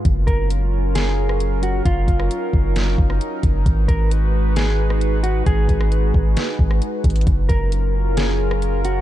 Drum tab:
HH |x---x---x-------x-------x---x---|x---x---x-------x-------x---x---|x---x---x-------x-------x---x---|x---x---x-------x-------x---xxxx|
SD |----------------o-----r---------|------r---------o-----r---------|----------------o-----r---------|------r---------o-----r---------|
BD |o---o---------------------------|o---o-------o-------o-------o---|o---o---------------------------|o---o-------o-------o-------o---|

HH |x---x---x-------x-------x---x---|
SD |----------------o-----r---------|
BD |o---o---------------------------|